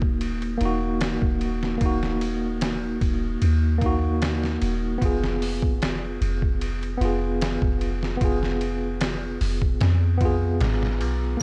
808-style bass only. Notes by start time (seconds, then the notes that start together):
Already playing: D#1
0.61 D#1
1.22 D#1
1.81 D#1
3.01 D#1
3.42 D#2
4.62 D#1
5.02 F1
6.21 F1
7.01 F1
7.62 F1
8.21 F1
9.41 F1
9.81 F2
10.61 G#1
11.01 B1